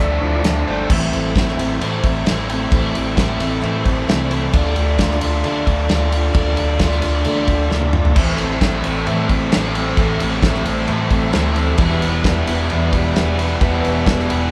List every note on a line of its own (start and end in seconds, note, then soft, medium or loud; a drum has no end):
0.00 0.15 D2 medium
0.00 0.43 D3 medium
0.00 0.66 D3 medium
0.00 0.21 F3 medium
0.00 0.66 F3 loud
0.00 0.21 A3 medium
0.00 0.67 A3 medium
0.00 0.22 D4 medium
0.00 0.66 D4 loud
0.00 0.22 E4 medium
0.00 0.21 A4 medium
0.00 0.22 E5 loud
0.18 0.42 F3 soft
0.18 0.42 D4 soft
0.18 0.42 E4 soft
0.18 0.21 C#5 medium
0.22 0.38 D2 medium
0.22 0.90 F3 medium
0.22 0.45 A3 soft
0.22 0.45 D4 medium
0.22 0.45 E4 medium
0.22 0.45 A4 medium
0.22 0.67 D5 medium
0.44 0.61 D2 medium
0.44 0.68 D3 medium
0.44 0.68 F3 medium
0.44 0.68 A3 medium
0.44 0.68 D4 medium
0.44 0.67 E4 loud
0.44 0.67 A4 loud
0.44 snare loud
0.44 closed hi-hat medium
0.67 0.83 G1 medium
0.67 0.89 D3 medium
0.67 0.90 F3 medium
0.67 0.89 A3 soft
0.67 0.90 D4 soft
0.67 0.89 E4 medium
0.67 0.89 A4 medium
0.67 0.89 C5 loud
0.90 1.09 A1 loud
0.90 1.13 A2 medium
0.90 1.13 E3 medium
0.90 1.13 A3 medium
0.90 4.49 C4 medium
0.90 1.12 C4 medium
0.90 1.12 E4 loud
0.90 4.49 E4 medium
0.90 4.49 A4 medium
0.90 1.11 A4 medium
0.90 4.49 C5 medium
0.90 kick loud
0.90 crash loud
1.12 1.32 A1 medium
1.12 1.33 A3 soft
1.12 1.34 C4 soft
1.12 1.34 E4 medium
1.12 1.35 A4 medium
1.12 ride medium
1.35 1.54 A1 loud
1.35 1.81 E3 medium
1.35 1.58 A3 medium
1.35 1.58 C4 medium
1.35 1.58 E4 medium
1.35 1.57 A4 medium
1.35 kick medium
1.35 snare medium
1.35 ride medium
1.48 snare soft
1.59 1.77 A1 medium
1.59 1.80 A3 medium
1.59 1.80 C4 medium
1.59 1.81 E4 medium
1.59 1.81 A4 medium
1.59 ride medium
1.80 1.99 A2 medium
1.80 2.04 A2 medium
1.80 2.04 E3 medium
1.80 2.04 A3 medium
1.80 2.04 C4 loud
1.80 2.03 E4 loud
1.80 2.02 A4 loud
1.80 ride loud
2.03 2.22 A1 medium
2.03 2.24 A3 medium
2.03 2.24 C4 medium
2.03 2.26 E4 medium
2.03 2.26 A4 medium
2.03 kick medium
2.03 ride medium
2.25 2.63 A1 medium
2.25 2.70 E3 medium
2.25 2.48 A3 medium
2.25 2.49 C4 medium
2.25 2.48 E4 medium
2.25 2.48 A4 medium
2.25 snare loud
2.25 ride loud
2.49 2.70 A3 medium
2.49 2.70 C4 medium
2.49 2.71 E4 medium
2.49 2.71 A4 medium
2.49 ride medium
2.71 2.90 A1 loud
2.71 2.94 A2 loud
2.71 2.94 E3 loud
2.71 2.94 A3 loud
2.71 2.94 C4 loud
2.71 2.94 E4 loud
2.71 2.93 A4 loud
2.71 kick loud
2.71 ride loud
2.94 3.13 A1 medium
2.94 3.14 A3 soft
2.94 3.15 C4 soft
2.94 3.16 E4 medium
2.94 3.17 A4 medium
2.94 ride medium
3.16 3.36 A1 loud
3.16 3.63 E3 medium
3.16 3.39 A3 medium
3.16 3.40 C4 medium
3.16 3.39 E4 medium
3.16 3.39 A4 medium
3.16 kick medium
3.16 snare loud
3.16 ride loud
3.40 3.58 A1 medium
3.40 3.60 A3 medium
3.40 3.61 C4 medium
3.40 3.60 E4 medium
3.40 3.61 A4 medium
3.40 ride medium
3.61 3.85 A2 medium
3.61 3.81 A2 medium
3.61 3.84 E3 medium
3.61 3.84 A3 loud
3.61 3.84 C4 loud
3.61 3.83 E4 loud
3.61 3.83 A4 medium
3.61 ride medium
3.84 4.04 A1 medium
3.84 4.06 A3 medium
3.84 4.07 C4 medium
3.84 4.07 E4 medium
3.84 4.07 A4 medium
3.84 kick medium
3.84 ride medium
4.07 4.45 C2 medium
4.07 4.52 E3 medium
4.07 4.30 A3 medium
4.07 4.29 C4 medium
4.07 4.28 E4 medium
4.07 4.28 A4 medium
4.07 snare loud
4.07 ride loud
4.29 4.51 A3 medium
4.29 4.53 C4 medium
4.29 4.53 E4 medium
4.29 4.53 A4 medium
4.29 ride medium
4.53 4.72 D2 loud
4.53 4.76 D3 medium
4.53 4.75 A3 medium
4.53 4.75 D4 loud
4.53 8.13 D4 medium
4.53 4.74 F4 loud
4.53 8.13 F4 medium
4.53 4.73 A4 loud
4.53 8.13 A4 medium
4.53 8.13 D5 medium
4.53 kick loud
4.53 ride loud
4.75 4.95 D2 loud
4.75 4.98 D4 medium
4.75 4.98 F4 medium
4.75 4.98 A4 medium
4.75 ride medium
4.98 5.17 D2 loud
4.98 5.43 D3 medium
4.98 5.21 A3 medium
4.98 5.21 D4 medium
4.98 5.20 F4 medium
4.98 5.19 A4 medium
4.98 kick medium
4.98 snare loud
4.98 ride medium
5.11 snare soft
5.21 5.40 D2 loud
5.21 5.44 A3 medium
5.21 5.42 D4 medium
5.21 5.43 F4 medium
5.21 5.43 A4 medium
5.21 ride medium
5.43 5.66 D3 medium
5.43 5.63 D3 loud
5.43 5.66 A3 medium
5.43 5.65 D4 loud
5.43 5.65 F4 loud
5.43 5.63 A4 loud
5.43 ride loud
5.65 5.85 D2 medium
5.65 5.88 D4 medium
5.65 5.89 F4 medium
5.65 5.88 A4 medium
5.65 kick medium
5.65 ride medium
5.88 6.26 D2 medium
5.88 6.33 D3 medium
5.88 6.11 A3 medium
5.88 6.12 D4 medium
5.88 6.11 F4 medium
5.88 6.10 A4 medium
5.88 snare loud
5.88 ride medium
6.11 6.34 A3 medium
6.11 6.32 D4 medium
6.11 6.33 F4 medium
6.11 6.33 A4 medium
6.11 ride medium
6.33 6.53 D2 loud
6.33 6.56 D3 loud
6.33 6.56 A3 medium
6.33 6.56 D4 loud
6.33 6.55 F4 loud
6.33 6.54 A4 loud
6.33 kick loud
6.33 ride loud
6.55 6.76 D2 medium
6.55 6.77 D4 soft
6.55 6.79 F4 medium
6.55 6.79 A4 medium
6.55 ride medium
6.78 6.98 D2 medium
6.78 7.23 D3 medium
6.78 7.02 A3 medium
6.78 7.02 D4 medium
6.78 7.01 F4 medium
6.78 7.00 A4 medium
6.78 kick medium
6.78 snare loud
6.78 ride loud
6.92 snare soft
7.01 7.22 D2 medium
7.01 7.25 D4 medium
7.01 7.25 F4 medium
7.01 7.24 A4 medium
7.01 ride medium
7.05 7.25 A3 medium
7.25 7.48 D3 medium
7.25 7.44 D3 medium
7.25 7.48 A3 loud
7.25 7.48 D4 loud
7.25 7.48 F4 medium
7.25 7.46 A4 loud
7.25 ride loud
7.48 7.66 D2 medium
7.48 7.70 D4 medium
7.48 7.71 F4 medium
7.48 7.70 A4 medium
7.48 kick medium
7.48 ride medium
7.69 8.08 D2 medium
7.69 8.14 D3 medium
7.69 7.93 A3 medium
7.69 7.93 D4 medium
7.69 7.94 F4 medium
7.69 7.93 A4 medium
7.69 snare medium
7.82 high tom medium
7.93 8.15 A3 medium
7.93 8.17 D4 soft
7.93 8.17 F4 medium
7.93 8.16 A4 medium
7.93 mid tom medium
8.05 floor tom medium
8.16 8.34 A1 loud
8.16 8.39 A2 medium
8.16 8.39 E3 medium
8.16 8.39 A3 loud
8.16 11.76 C4 medium
8.16 8.39 C4 medium
8.16 11.76 E4 medium
8.16 8.39 E4 loud
8.16 11.76 A4 medium
8.16 8.39 A4 loud
8.16 11.76 C5 medium
8.16 kick loud
8.16 crash loud
8.38 8.58 A1 medium
8.38 8.60 A3 soft
8.38 8.61 C4 medium
8.38 8.61 E4 medium
8.38 8.62 A4 medium
8.38 ride medium
8.61 8.80 A1 loud
8.61 9.06 E3 medium
8.61 8.84 A3 medium
8.61 8.84 C4 medium
8.61 8.83 E4 medium
8.61 8.83 A4 medium
8.61 kick medium
8.61 snare loud
8.61 ride medium
8.84 9.03 A1 loud
8.84 9.05 A3 medium
8.84 9.05 C4 medium
8.84 9.06 E4 medium
8.84 9.06 A4 medium
8.84 ride medium
9.06 9.29 A2 medium
9.06 9.25 A2 medium
9.06 9.29 E3 medium
9.06 9.29 A3 medium
9.06 9.29 C4 medium
9.06 9.29 E4 medium
9.06 9.28 A4 medium
9.06 ride medium
9.29 9.48 A1 medium
9.29 9.50 A3 medium
9.29 9.52 C4 medium
9.29 9.52 E4 medium
9.29 9.52 A4 medium
9.29 kick medium
9.29 ride medium
9.51 9.89 A1 medium
9.51 9.97 E3 medium
9.51 9.75 A3 medium
9.51 9.75 C4 medium
9.51 9.74 E4 medium
9.51 9.73 A4 medium
9.51 snare loud
9.51 ride loud
9.75 9.96 A3 medium
9.75 9.97 C4 soft
9.75 9.97 E4 medium
9.75 9.97 A4 medium
9.75 ride medium
9.97 10.16 A1 medium
9.97 10.20 A2 medium
9.97 10.20 E3 medium
9.97 10.20 A3 loud
9.97 10.21 C4 loud
9.97 10.20 E4 loud
9.97 10.19 A4 loud
9.97 kick loud
9.97 ride loud
10.20 10.39 A1 medium
10.20 10.41 A3 medium
10.20 10.42 C4 medium
10.20 10.42 E4 medium
10.20 10.43 A4 medium
10.20 ride medium
10.42 10.61 A1 medium
10.42 10.87 E3 medium
10.42 10.65 A3 medium
10.42 10.64 C4 medium
10.42 10.63 E4 medium
10.42 10.64 A4 medium
10.42 kick medium
10.42 snare loud
10.42 ride medium
10.54 snare soft
10.65 10.84 A1 medium
10.65 10.86 A3 medium
10.65 10.87 C4 medium
10.65 10.87 E4 medium
10.65 10.88 A4 medium
10.65 ride medium
10.87 11.11 A2 medium
10.87 11.07 A2 medium
10.87 11.10 E3 loud
10.87 11.10 A3 loud
10.87 11.09 C4 medium
10.87 11.09 E4 loud
10.87 11.08 A4 loud
10.87 ride loud
11.09 11.29 A1 medium
11.09 11.30 A3 medium
11.09 11.31 C4 medium
11.09 11.31 E4 medium
11.09 11.32 A4 medium
11.09 kick medium
11.09 ride medium
11.31 11.71 D2 loud
11.31 11.78 E3 medium
11.31 11.54 A3 medium
11.31 11.54 C4 medium
11.31 11.54 E4 medium
11.31 11.53 A4 medium
11.31 snare loud
11.31 ride loud
11.54 11.77 A3 medium
11.54 11.77 C4 medium
11.54 11.76 E4 medium
11.54 11.78 A4 medium
11.54 ride medium
11.77 11.97 E1 loud
11.77 13.59 E2 medium
11.77 13.60 B2 loud
11.77 12.01 E3 medium
11.77 12.01 G3 loud
11.77 14.51 B3 medium
11.77 12.26 B3 loud
11.77 12.01 E4 loud
11.77 14.51 E4 medium
11.77 14.51 G4 medium
11.77 12.02 G4 loud
11.77 14.51 B4 medium
11.77 12.00 B4 loud
11.77 kick loud
11.77 ride loud
12.01 12.21 E1 medium
12.01 12.23 E4 soft
12.01 12.24 G4 medium
12.01 12.24 B4 medium
12.01 ride medium
12.23 12.43 E1 medium
12.23 12.70 E3 medium
12.23 12.47 G3 medium
12.23 12.48 B3 medium
12.23 12.47 E4 medium
12.23 12.46 G4 medium
12.23 12.46 B4 medium
12.23 kick medium
12.23 snare loud
12.23 ride medium
12.47 12.67 E1 medium
12.47 12.70 G3 medium
12.47 12.71 B3 medium
12.47 12.68 E4 medium
12.47 12.69 G4 medium
12.47 12.69 B4 medium
12.47 ride medium
12.69 12.90 E2 medium
12.69 12.92 E3 loud
12.69 12.93 G3 loud
12.69 13.16 B3 loud
12.69 12.92 E4 loud
12.69 12.92 G4 medium
12.69 12.90 B4 medium
12.69 ride medium
12.92 13.11 E1 medium
12.92 13.13 E4 medium
12.92 13.14 G4 medium
12.92 13.14 B4 medium
12.92 kick medium
12.92 ride medium
13.13 13.53 E1 medium
13.13 13.60 E3 medium
13.13 13.37 G3 medium
13.13 13.38 B3 medium
13.13 13.38 E4 medium
13.13 13.38 G4 medium
13.13 13.36 B4 medium
13.13 snare loud
13.13 ride loud
13.37 13.60 G3 medium
13.37 13.61 B3 medium
13.37 13.60 E4 medium
13.37 13.60 G4 medium
13.37 13.61 B4 medium
13.37 ride medium
13.60 13.80 E1 loud
13.60 14.51 E2 loud
13.60 14.51 B2 loud
13.60 13.84 E3 loud
13.60 13.84 G3 medium
13.60 14.05 B3 loud
13.60 13.83 E4 medium
13.60 13.82 G4 loud
13.60 13.81 B4 loud
13.60 kick loud
13.60 ride loud
13.82 14.03 E1 medium
13.82 14.06 E4 soft
13.82 14.06 G4 medium
13.82 14.06 B4 medium
13.82 ride medium
14.05 14.25 E1 medium
14.05 14.49 E3 medium
14.05 14.29 G3 medium
14.05 14.29 B3 medium
14.05 14.30 E4 medium
14.05 14.29 G4 medium
14.05 14.28 B4 medium
14.05 kick medium
14.05 snare loud
14.05 ride loud
14.19 snare soft
14.29 14.49 E1 medium
14.29 14.50 G3 soft
14.29 14.51 B3 medium
14.29 14.51 E4 medium
14.29 14.51 G4 medium
14.29 14.51 B4 medium
14.29 ride medium